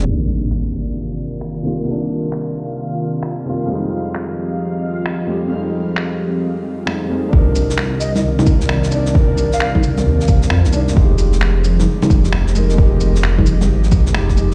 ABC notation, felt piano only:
X:1
M:4/4
L:1/8
Q:"Swing 16ths" 1/4=132
K:Cm
V:1 name="Felt piano"
[C,,E,B,D]6- [C,,E,B,D] [C,,E,B,F] | [C,,E,B,D]6- [C,,E,B,D] [C,,E,B,F] | [F,,G,A,E]6- [F,,G,A,E] [F,,G,A,G] | [F,,G,A,E]6 [F,,G,A,E] [F,,G,A,E] |
[DEB]6- [DEB] [DEd] | [DEB]6- [DEB] [DEd] | [A,EG]6- [A,EG] [A,EB] | [A,EG]6 [A,EG] [A,EG] |]